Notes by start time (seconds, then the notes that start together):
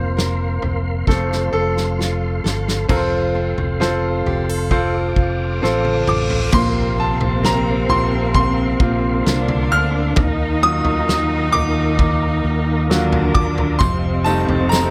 Already playing: F1 F3 A#3 C4 A#4 C5 F5 C6
0.17 A#4, snare
0.62 F1 C4, floor tom
1.07 F1 F3 A3 C4 A4 F5, kick, snare
1.32 snare
1.53 F1 A4
1.77 snare
1.99 F4, snare
2.44 G1 A4, snare
2.68 snare
2.88 F1 F3 C4 F4 A4 A#4 F5 C6, kick, floor tom, crash
2.97 C5
3.35 C4
3.58 F1, floor tom
3.80 C4 F4 A4 C5, snare
4.26 F1 G4, floor tom
4.49 A4
4.71 C4 F4 A4 C5 D6, kick, floor tom, reverse cymbal
5.16 F1 F4, kick
5.62 A1 C4 F4 A4 C5, snare
5.85 high tom
6.07 A1 F4 D6, mid tom
6.30 floor tom
6.53 A#1 C3 A#3 C4 F4 F5 C6, kick, floor tom, crash, impact
6.98 C4 A5
7.21 A#1, floor tom
7.43 A#4 A#5, snare
7.89 A#1 F4 C6, floor tom
8.34 C4 C6, kick, floor tom
8.80 A#1 A#3 C4 F4, kick
9.26 C2 D3 C4 D4, snare
9.48 floor tom
9.71 D2 F4 F6
10.16 D#2 D#3 D#4 A#4 F5 A#5, kick, floor tom
10.63 D#3 F#3 A#3 F4 D#6
10.85 D#2, floor tom
11.08 A#4, snare
11.52 D#2 F4 D6, floor tom
11.99 A#3, kick, floor tom
12.44 D#2 F4
12.90 D3 F#3 A#3 D4 F4 F#4, snare
13.12 floor tom
13.34 D#2 F4 D6, kick
13.58 floor tom
13.79 F1 C3 F3 C4 D#5 C6, kick, floor tom, tambourine
14.24 G3 A3 C4 D#4 A5, tambourine
14.49 F1, floor tom
14.69 A4 A#5, snare, tambourine